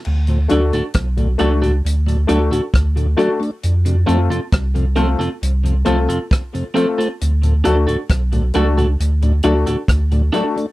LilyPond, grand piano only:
\new Staff \with { instrumentName = "Grand piano" } { \time 4/4 \key d \major \tempo 4 = 67 r8 <a d' fis' a'>16 r8 <fis' a'>16 <a d' fis' a'>16 r8. <a d' fis' a'>16 <fis' a'>16 r16 <fis' a'>16 <a d' fis' a'>16 r16 | r8 <a c' f' a'>16 r8 <f' a'>16 <a c' f' a'>16 r8. <a c' f' a'>16 <f' a'>16 r16 <f' a'>16 <a c' f' a'>16 r16 | r8 <a d' fis' a'>16 r8 <fis' a'>16 <a d' fis' a'>16 r8. <a d' fis' a'>16 <fis' a'>16 r16 <fis' a'>16 <a d' fis' a'>16 r16 | }